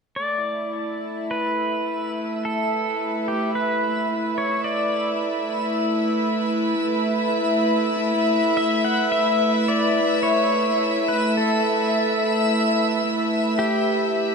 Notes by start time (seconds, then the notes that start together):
0.16 A3 A4 D5 E5 E6
0.35 E4
1.31 B4
2.45 A4
2.69 B4
3.28 G4
3.55 B4
4.38 C#5
4.59 E5
4.64 D5
8.57 E5
8.85 F#5
9.12 E5
9.68 D5
10.23 C#5
11.08 B4
11.37 A4
13.59 G4